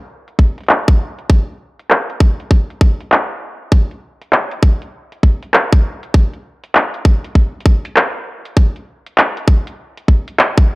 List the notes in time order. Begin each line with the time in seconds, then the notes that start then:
0.28 closed hi-hat
0.39 kick
0.58 closed hi-hat
0.60 closed hi-hat
0.63 closed hi-hat
0.66 clap, closed hi-hat
0.69 closed hi-hat
0.83 closed hi-hat
0.88 kick
1.19 closed hi-hat
1.30 kick
1.79 closed hi-hat
1.90 clap
2.10 closed hi-hat
2.20 kick
2.40 closed hi-hat
2.51 kick
2.70 closed hi-hat
2.81 kick
3.01 closed hi-hat
3.12 clap
3.72 kick
3.91 closed hi-hat
4.22 closed hi-hat
4.33 clap
4.51 closed hi-hat
4.63 kick
4.82 closed hi-hat
5.12 closed hi-hat
5.23 kick
5.43 closed hi-hat
5.54 clap
5.73 kick
6.03 closed hi-hat
6.14 kick
6.33 closed hi-hat
6.64 closed hi-hat
6.75 clap
6.94 closed hi-hat
7.05 kick
7.25 closed hi-hat
7.35 kick
7.61 closed hi-hat
7.66 kick
7.85 closed hi-hat
7.96 clap
8.45 closed hi-hat
8.57 kick
8.76 closed hi-hat
9.06 closed hi-hat
9.18 clap
9.37 closed hi-hat
9.48 kick
9.67 closed hi-hat
9.97 closed hi-hat
10.08 kick
10.28 closed hi-hat
10.39 clap
10.58 kick